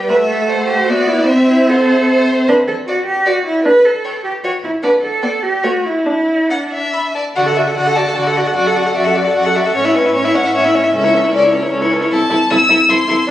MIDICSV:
0, 0, Header, 1, 5, 480
1, 0, Start_track
1, 0, Key_signature, 2, "major"
1, 0, Tempo, 395257
1, 109, Time_signature, 3, 2, 24, 8
1, 6348, Tempo, 422535
1, 9228, Tempo, 397878
1, 13068, Tempo, 389610
1, 15976, End_track
2, 0, Start_track
2, 0, Title_t, "Violin"
2, 0, Program_c, 0, 40
2, 0, Note_on_c, 0, 79, 34
2, 113, Note_on_c, 0, 78, 39
2, 131, Note_off_c, 0, 79, 0
2, 1085, Note_on_c, 0, 76, 37
2, 1103, Note_off_c, 0, 78, 0
2, 1547, Note_off_c, 0, 76, 0
2, 1554, Note_on_c, 0, 76, 43
2, 2045, Note_off_c, 0, 76, 0
2, 2065, Note_on_c, 0, 78, 46
2, 2160, Note_off_c, 0, 78, 0
2, 2294, Note_on_c, 0, 76, 45
2, 2530, Note_off_c, 0, 76, 0
2, 2538, Note_on_c, 0, 76, 43
2, 3003, Note_off_c, 0, 76, 0
2, 3496, Note_on_c, 0, 78, 49
2, 3593, Note_off_c, 0, 78, 0
2, 3967, Note_on_c, 0, 78, 43
2, 4064, Note_off_c, 0, 78, 0
2, 4916, Note_on_c, 0, 79, 46
2, 5013, Note_off_c, 0, 79, 0
2, 5394, Note_on_c, 0, 79, 44
2, 5491, Note_off_c, 0, 79, 0
2, 5858, Note_on_c, 0, 78, 45
2, 5956, Note_off_c, 0, 78, 0
2, 6341, Note_on_c, 0, 79, 41
2, 6432, Note_off_c, 0, 79, 0
2, 6808, Note_on_c, 0, 79, 38
2, 6899, Note_off_c, 0, 79, 0
2, 7797, Note_on_c, 0, 78, 32
2, 7888, Note_off_c, 0, 78, 0
2, 8284, Note_on_c, 0, 83, 57
2, 8375, Note_off_c, 0, 83, 0
2, 8529, Note_on_c, 0, 81, 42
2, 8620, Note_off_c, 0, 81, 0
2, 8769, Note_on_c, 0, 78, 62
2, 8860, Note_off_c, 0, 78, 0
2, 8995, Note_on_c, 0, 76, 49
2, 9086, Note_off_c, 0, 76, 0
2, 9230, Note_on_c, 0, 78, 60
2, 9459, Note_on_c, 0, 81, 56
2, 9477, Note_off_c, 0, 78, 0
2, 9709, Note_on_c, 0, 78, 56
2, 9727, Note_off_c, 0, 81, 0
2, 10177, Note_off_c, 0, 78, 0
2, 10184, Note_on_c, 0, 78, 59
2, 10668, Note_on_c, 0, 76, 59
2, 10686, Note_off_c, 0, 78, 0
2, 10908, Note_on_c, 0, 74, 52
2, 10926, Note_off_c, 0, 76, 0
2, 11145, Note_off_c, 0, 74, 0
2, 11152, Note_on_c, 0, 78, 62
2, 11392, Note_on_c, 0, 76, 62
2, 11410, Note_off_c, 0, 78, 0
2, 11619, Note_off_c, 0, 76, 0
2, 11626, Note_on_c, 0, 73, 65
2, 11863, Note_on_c, 0, 71, 59
2, 11881, Note_off_c, 0, 73, 0
2, 12115, Note_on_c, 0, 73, 68
2, 12133, Note_off_c, 0, 71, 0
2, 12351, Note_on_c, 0, 78, 62
2, 12369, Note_off_c, 0, 73, 0
2, 12591, Note_on_c, 0, 76, 54
2, 12609, Note_off_c, 0, 78, 0
2, 13063, Note_off_c, 0, 76, 0
2, 13070, Note_on_c, 0, 76, 71
2, 13543, Note_off_c, 0, 76, 0
2, 13553, Note_on_c, 0, 74, 76
2, 13778, Note_off_c, 0, 74, 0
2, 13785, Note_on_c, 0, 73, 60
2, 14027, Note_off_c, 0, 73, 0
2, 14511, Note_on_c, 0, 81, 82
2, 14989, Note_on_c, 0, 88, 91
2, 15008, Note_off_c, 0, 81, 0
2, 15475, Note_on_c, 0, 84, 84
2, 15493, Note_off_c, 0, 88, 0
2, 15947, Note_off_c, 0, 84, 0
2, 15976, End_track
3, 0, Start_track
3, 0, Title_t, "Violin"
3, 0, Program_c, 1, 40
3, 124, Note_on_c, 1, 76, 38
3, 598, Note_on_c, 1, 72, 37
3, 616, Note_off_c, 1, 76, 0
3, 1089, Note_on_c, 1, 74, 39
3, 1107, Note_off_c, 1, 72, 0
3, 1560, Note_on_c, 1, 76, 39
3, 1578, Note_off_c, 1, 74, 0
3, 2074, Note_on_c, 1, 72, 38
3, 2093, Note_off_c, 1, 76, 0
3, 2539, Note_off_c, 1, 72, 0
3, 2547, Note_on_c, 1, 72, 43
3, 3008, Note_off_c, 1, 72, 0
3, 3498, Note_on_c, 1, 74, 44
3, 3595, Note_off_c, 1, 74, 0
3, 3956, Note_on_c, 1, 74, 43
3, 4053, Note_off_c, 1, 74, 0
3, 4913, Note_on_c, 1, 73, 44
3, 5010, Note_off_c, 1, 73, 0
3, 5394, Note_on_c, 1, 73, 46
3, 5491, Note_off_c, 1, 73, 0
3, 5869, Note_on_c, 1, 74, 42
3, 5966, Note_off_c, 1, 74, 0
3, 6353, Note_on_c, 1, 74, 36
3, 6444, Note_off_c, 1, 74, 0
3, 6813, Note_on_c, 1, 73, 38
3, 6904, Note_off_c, 1, 73, 0
3, 7799, Note_on_c, 1, 78, 43
3, 7890, Note_off_c, 1, 78, 0
3, 8047, Note_on_c, 1, 76, 41
3, 8522, Note_off_c, 1, 76, 0
3, 8539, Note_on_c, 1, 74, 33
3, 8629, Note_off_c, 1, 74, 0
3, 8782, Note_on_c, 1, 74, 37
3, 8901, Note_on_c, 1, 78, 32
3, 8918, Note_off_c, 1, 74, 0
3, 9011, Note_on_c, 1, 74, 34
3, 9028, Note_off_c, 1, 78, 0
3, 9123, Note_on_c, 1, 78, 33
3, 9140, Note_off_c, 1, 74, 0
3, 9228, Note_off_c, 1, 78, 0
3, 9235, Note_on_c, 1, 74, 35
3, 9357, Note_on_c, 1, 78, 32
3, 9375, Note_off_c, 1, 74, 0
3, 9474, Note_on_c, 1, 74, 32
3, 9492, Note_off_c, 1, 78, 0
3, 9599, Note_on_c, 1, 78, 33
3, 9617, Note_off_c, 1, 74, 0
3, 9707, Note_off_c, 1, 78, 0
3, 9715, Note_on_c, 1, 74, 36
3, 9847, Note_on_c, 1, 78, 32
3, 9865, Note_off_c, 1, 74, 0
3, 9960, Note_on_c, 1, 74, 32
3, 9978, Note_off_c, 1, 78, 0
3, 10078, Note_on_c, 1, 78, 34
3, 10096, Note_off_c, 1, 74, 0
3, 10184, Note_off_c, 1, 78, 0
3, 10191, Note_on_c, 1, 74, 36
3, 10316, Note_on_c, 1, 78, 33
3, 10334, Note_off_c, 1, 74, 0
3, 10426, Note_on_c, 1, 74, 33
3, 10445, Note_off_c, 1, 78, 0
3, 10549, Note_on_c, 1, 78, 31
3, 10567, Note_off_c, 1, 74, 0
3, 10652, Note_off_c, 1, 78, 0
3, 10659, Note_on_c, 1, 74, 36
3, 10777, Note_on_c, 1, 78, 34
3, 10795, Note_off_c, 1, 74, 0
3, 10902, Note_on_c, 1, 74, 35
3, 10920, Note_off_c, 1, 78, 0
3, 11015, Note_on_c, 1, 78, 35
3, 11033, Note_off_c, 1, 74, 0
3, 11137, Note_off_c, 1, 78, 0
3, 11145, Note_on_c, 1, 74, 37
3, 11261, Note_on_c, 1, 78, 34
3, 11279, Note_off_c, 1, 74, 0
3, 11387, Note_on_c, 1, 74, 34
3, 11405, Note_off_c, 1, 78, 0
3, 11507, Note_on_c, 1, 78, 36
3, 11525, Note_off_c, 1, 74, 0
3, 11618, Note_off_c, 1, 78, 0
3, 11625, Note_on_c, 1, 73, 42
3, 11744, Note_on_c, 1, 76, 38
3, 11762, Note_off_c, 1, 73, 0
3, 11875, Note_on_c, 1, 73, 35
3, 11894, Note_off_c, 1, 76, 0
3, 11993, Note_on_c, 1, 76, 35
3, 12011, Note_off_c, 1, 73, 0
3, 12098, Note_off_c, 1, 76, 0
3, 12105, Note_on_c, 1, 73, 38
3, 12231, Note_on_c, 1, 76, 36
3, 12249, Note_off_c, 1, 73, 0
3, 12351, Note_on_c, 1, 73, 38
3, 12369, Note_off_c, 1, 76, 0
3, 12478, Note_on_c, 1, 76, 38
3, 12496, Note_off_c, 1, 73, 0
3, 12584, Note_off_c, 1, 76, 0
3, 12591, Note_on_c, 1, 73, 42
3, 12708, Note_on_c, 1, 76, 37
3, 12726, Note_off_c, 1, 73, 0
3, 12829, Note_on_c, 1, 73, 39
3, 12847, Note_off_c, 1, 76, 0
3, 12940, Note_on_c, 1, 76, 40
3, 12958, Note_off_c, 1, 73, 0
3, 13059, Note_off_c, 1, 76, 0
3, 13067, Note_on_c, 1, 69, 44
3, 13184, Note_on_c, 1, 73, 39
3, 13203, Note_off_c, 1, 69, 0
3, 13305, Note_on_c, 1, 69, 43
3, 13324, Note_off_c, 1, 73, 0
3, 13429, Note_on_c, 1, 73, 41
3, 13447, Note_off_c, 1, 69, 0
3, 13540, Note_off_c, 1, 73, 0
3, 13548, Note_on_c, 1, 69, 43
3, 13668, Note_on_c, 1, 73, 44
3, 13686, Note_off_c, 1, 69, 0
3, 13784, Note_on_c, 1, 69, 44
3, 13803, Note_off_c, 1, 73, 0
3, 13907, Note_on_c, 1, 73, 43
3, 13926, Note_off_c, 1, 69, 0
3, 14019, Note_off_c, 1, 73, 0
3, 14027, Note_on_c, 1, 69, 46
3, 14146, Note_on_c, 1, 73, 45
3, 14164, Note_off_c, 1, 69, 0
3, 14282, Note_on_c, 1, 69, 46
3, 14301, Note_off_c, 1, 73, 0
3, 14396, Note_on_c, 1, 73, 45
3, 14414, Note_off_c, 1, 69, 0
3, 14510, Note_off_c, 1, 73, 0
3, 14517, Note_on_c, 1, 69, 54
3, 14611, Note_off_c, 1, 69, 0
3, 14745, Note_on_c, 1, 69, 46
3, 14842, Note_off_c, 1, 69, 0
3, 14991, Note_on_c, 1, 69, 46
3, 15088, Note_off_c, 1, 69, 0
3, 15231, Note_on_c, 1, 69, 49
3, 15327, Note_off_c, 1, 69, 0
3, 15474, Note_on_c, 1, 69, 51
3, 15569, Note_off_c, 1, 69, 0
3, 15715, Note_on_c, 1, 69, 49
3, 15810, Note_off_c, 1, 69, 0
3, 15976, End_track
4, 0, Start_track
4, 0, Title_t, "Cello"
4, 0, Program_c, 2, 42
4, 107, Note_on_c, 2, 71, 64
4, 204, Note_off_c, 2, 71, 0
4, 342, Note_on_c, 2, 69, 44
4, 820, Note_off_c, 2, 69, 0
4, 826, Note_on_c, 2, 67, 56
4, 1066, Note_off_c, 2, 67, 0
4, 1074, Note_on_c, 2, 66, 57
4, 1310, Note_on_c, 2, 64, 53
4, 1328, Note_off_c, 2, 66, 0
4, 1554, Note_on_c, 2, 60, 57
4, 1572, Note_off_c, 2, 64, 0
4, 1796, Note_off_c, 2, 60, 0
4, 1803, Note_on_c, 2, 64, 56
4, 2055, Note_on_c, 2, 69, 58
4, 2073, Note_off_c, 2, 64, 0
4, 2774, Note_off_c, 2, 69, 0
4, 3016, Note_on_c, 2, 71, 75
4, 3110, Note_off_c, 2, 71, 0
4, 3250, Note_on_c, 2, 69, 55
4, 3345, Note_off_c, 2, 69, 0
4, 3490, Note_on_c, 2, 66, 67
4, 3718, Note_off_c, 2, 66, 0
4, 3726, Note_on_c, 2, 67, 66
4, 3968, Note_on_c, 2, 66, 67
4, 3987, Note_off_c, 2, 67, 0
4, 4196, Note_off_c, 2, 66, 0
4, 4204, Note_on_c, 2, 64, 62
4, 4432, Note_off_c, 2, 64, 0
4, 4440, Note_on_c, 2, 71, 84
4, 4675, Note_on_c, 2, 69, 65
4, 4693, Note_off_c, 2, 71, 0
4, 5144, Note_off_c, 2, 69, 0
4, 5151, Note_on_c, 2, 67, 65
4, 5248, Note_off_c, 2, 67, 0
4, 5391, Note_on_c, 2, 66, 67
4, 5487, Note_off_c, 2, 66, 0
4, 5632, Note_on_c, 2, 64, 60
4, 5727, Note_off_c, 2, 64, 0
4, 5866, Note_on_c, 2, 71, 79
4, 5962, Note_off_c, 2, 71, 0
4, 6107, Note_on_c, 2, 69, 56
4, 6575, Note_on_c, 2, 67, 61
4, 6592, Note_off_c, 2, 69, 0
4, 6812, Note_on_c, 2, 66, 58
4, 6829, Note_off_c, 2, 67, 0
4, 7054, Note_on_c, 2, 64, 50
4, 7071, Note_off_c, 2, 66, 0
4, 7290, Note_off_c, 2, 64, 0
4, 7296, Note_on_c, 2, 64, 55
4, 7798, Note_on_c, 2, 62, 42
4, 7815, Note_off_c, 2, 64, 0
4, 8287, Note_off_c, 2, 62, 0
4, 8764, Note_on_c, 2, 50, 45
4, 9172, Note_off_c, 2, 50, 0
4, 9228, Note_on_c, 2, 50, 42
4, 9651, Note_off_c, 2, 50, 0
4, 9706, Note_on_c, 2, 50, 45
4, 10133, Note_off_c, 2, 50, 0
4, 10190, Note_on_c, 2, 42, 46
4, 10617, Note_off_c, 2, 42, 0
4, 10674, Note_on_c, 2, 42, 45
4, 11097, Note_off_c, 2, 42, 0
4, 11152, Note_on_c, 2, 42, 45
4, 11576, Note_off_c, 2, 42, 0
4, 11633, Note_on_c, 2, 45, 51
4, 12055, Note_off_c, 2, 45, 0
4, 12111, Note_on_c, 2, 45, 48
4, 12536, Note_off_c, 2, 45, 0
4, 12592, Note_on_c, 2, 45, 53
4, 13013, Note_off_c, 2, 45, 0
4, 13070, Note_on_c, 2, 37, 55
4, 13495, Note_off_c, 2, 37, 0
4, 13546, Note_on_c, 2, 37, 53
4, 13976, Note_off_c, 2, 37, 0
4, 14031, Note_on_c, 2, 37, 58
4, 14454, Note_off_c, 2, 37, 0
4, 14508, Note_on_c, 2, 36, 58
4, 14604, Note_off_c, 2, 36, 0
4, 14745, Note_on_c, 2, 36, 50
4, 14842, Note_off_c, 2, 36, 0
4, 14990, Note_on_c, 2, 36, 55
4, 15086, Note_off_c, 2, 36, 0
4, 15230, Note_on_c, 2, 36, 54
4, 15326, Note_off_c, 2, 36, 0
4, 15474, Note_on_c, 2, 36, 59
4, 15569, Note_off_c, 2, 36, 0
4, 15710, Note_on_c, 2, 36, 53
4, 15806, Note_off_c, 2, 36, 0
4, 15976, End_track
5, 0, Start_track
5, 0, Title_t, "Viola"
5, 0, Program_c, 3, 41
5, 0, Note_on_c, 3, 55, 35
5, 115, Note_on_c, 3, 57, 42
5, 133, Note_off_c, 3, 55, 0
5, 1081, Note_on_c, 3, 59, 39
5, 1099, Note_off_c, 3, 57, 0
5, 1557, Note_off_c, 3, 59, 0
5, 1562, Note_on_c, 3, 60, 49
5, 2986, Note_off_c, 3, 60, 0
5, 3022, Note_on_c, 3, 62, 61
5, 3393, Note_off_c, 3, 62, 0
5, 4436, Note_on_c, 3, 62, 61
5, 4816, Note_off_c, 3, 62, 0
5, 5873, Note_on_c, 3, 62, 62
5, 6249, Note_off_c, 3, 62, 0
5, 6349, Note_on_c, 3, 59, 52
5, 6715, Note_off_c, 3, 59, 0
5, 6821, Note_on_c, 3, 57, 47
5, 7202, Note_off_c, 3, 57, 0
5, 7296, Note_on_c, 3, 62, 45
5, 7692, Note_off_c, 3, 62, 0
5, 8771, Note_on_c, 3, 66, 36
5, 8882, Note_on_c, 3, 69, 34
5, 8899, Note_off_c, 3, 66, 0
5, 9014, Note_on_c, 3, 66, 35
5, 9031, Note_off_c, 3, 69, 0
5, 9120, Note_on_c, 3, 69, 33
5, 9137, Note_off_c, 3, 66, 0
5, 9229, Note_off_c, 3, 69, 0
5, 9236, Note_on_c, 3, 66, 35
5, 9355, Note_on_c, 3, 69, 33
5, 9373, Note_off_c, 3, 66, 0
5, 9477, Note_on_c, 3, 66, 35
5, 9495, Note_off_c, 3, 69, 0
5, 9604, Note_on_c, 3, 69, 31
5, 9622, Note_off_c, 3, 66, 0
5, 9709, Note_off_c, 3, 69, 0
5, 9716, Note_on_c, 3, 66, 35
5, 9834, Note_on_c, 3, 69, 34
5, 9852, Note_off_c, 3, 66, 0
5, 9958, Note_on_c, 3, 66, 35
5, 9976, Note_off_c, 3, 69, 0
5, 10080, Note_on_c, 3, 69, 33
5, 10098, Note_off_c, 3, 66, 0
5, 10187, Note_off_c, 3, 69, 0
5, 10194, Note_on_c, 3, 66, 39
5, 10320, Note_on_c, 3, 69, 34
5, 10338, Note_off_c, 3, 66, 0
5, 10443, Note_on_c, 3, 66, 35
5, 10462, Note_off_c, 3, 69, 0
5, 10558, Note_on_c, 3, 69, 34
5, 10576, Note_off_c, 3, 66, 0
5, 10663, Note_off_c, 3, 69, 0
5, 10671, Note_on_c, 3, 66, 38
5, 10796, Note_on_c, 3, 69, 34
5, 10814, Note_off_c, 3, 66, 0
5, 10919, Note_on_c, 3, 66, 34
5, 10937, Note_off_c, 3, 69, 0
5, 11042, Note_on_c, 3, 69, 35
5, 11060, Note_off_c, 3, 66, 0
5, 11148, Note_off_c, 3, 69, 0
5, 11155, Note_on_c, 3, 66, 37
5, 11274, Note_on_c, 3, 69, 34
5, 11292, Note_off_c, 3, 66, 0
5, 11395, Note_on_c, 3, 66, 37
5, 11413, Note_off_c, 3, 69, 0
5, 11517, Note_on_c, 3, 69, 37
5, 11535, Note_off_c, 3, 66, 0
5, 11635, Note_off_c, 3, 69, 0
5, 11640, Note_on_c, 3, 61, 39
5, 11748, Note_on_c, 3, 64, 37
5, 11766, Note_off_c, 3, 61, 0
5, 11863, Note_on_c, 3, 61, 40
5, 11881, Note_off_c, 3, 64, 0
5, 11997, Note_on_c, 3, 64, 39
5, 12015, Note_off_c, 3, 61, 0
5, 12099, Note_off_c, 3, 64, 0
5, 12107, Note_on_c, 3, 61, 39
5, 12225, Note_on_c, 3, 64, 36
5, 12243, Note_off_c, 3, 61, 0
5, 12348, Note_on_c, 3, 61, 38
5, 12366, Note_off_c, 3, 64, 0
5, 12463, Note_on_c, 3, 64, 37
5, 12481, Note_off_c, 3, 61, 0
5, 12579, Note_off_c, 3, 64, 0
5, 12586, Note_on_c, 3, 61, 40
5, 12712, Note_on_c, 3, 64, 40
5, 12730, Note_off_c, 3, 61, 0
5, 12830, Note_on_c, 3, 61, 40
5, 12848, Note_off_c, 3, 64, 0
5, 12948, Note_on_c, 3, 64, 40
5, 12966, Note_off_c, 3, 61, 0
5, 13054, Note_off_c, 3, 64, 0
5, 13061, Note_on_c, 3, 61, 43
5, 13188, Note_on_c, 3, 64, 41
5, 13206, Note_off_c, 3, 61, 0
5, 13300, Note_on_c, 3, 61, 45
5, 13319, Note_off_c, 3, 64, 0
5, 13427, Note_on_c, 3, 64, 40
5, 13446, Note_off_c, 3, 61, 0
5, 13545, Note_off_c, 3, 64, 0
5, 13552, Note_on_c, 3, 61, 44
5, 13672, Note_on_c, 3, 64, 40
5, 13690, Note_off_c, 3, 61, 0
5, 13792, Note_on_c, 3, 61, 42
5, 13810, Note_off_c, 3, 64, 0
5, 13910, Note_on_c, 3, 64, 42
5, 13928, Note_off_c, 3, 61, 0
5, 14019, Note_off_c, 3, 64, 0
5, 14026, Note_on_c, 3, 61, 46
5, 14140, Note_on_c, 3, 64, 44
5, 14158, Note_off_c, 3, 61, 0
5, 14265, Note_on_c, 3, 61, 45
5, 14283, Note_off_c, 3, 64, 0
5, 14380, Note_on_c, 3, 64, 45
5, 14399, Note_off_c, 3, 61, 0
5, 14490, Note_off_c, 3, 64, 0
5, 14497, Note_on_c, 3, 64, 54
5, 14595, Note_off_c, 3, 64, 0
5, 14733, Note_on_c, 3, 64, 46
5, 14831, Note_off_c, 3, 64, 0
5, 14988, Note_on_c, 3, 64, 52
5, 15085, Note_off_c, 3, 64, 0
5, 15219, Note_on_c, 3, 64, 53
5, 15318, Note_off_c, 3, 64, 0
5, 15458, Note_on_c, 3, 64, 53
5, 15556, Note_off_c, 3, 64, 0
5, 15695, Note_on_c, 3, 64, 51
5, 15794, Note_off_c, 3, 64, 0
5, 15936, Note_on_c, 3, 62, 56
5, 15976, Note_off_c, 3, 62, 0
5, 15976, End_track
0, 0, End_of_file